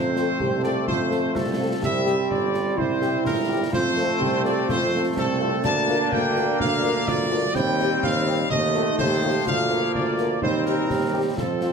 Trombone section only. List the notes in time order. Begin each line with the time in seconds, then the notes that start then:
Already playing: A3 C4
1.83 G3 C4
3.75 A3 C4
5.64 A#3 D4
7.54 G3 C4
8.50 F3 A3
9.47 A#3
10.42 G3 C4
11.38 F3 C4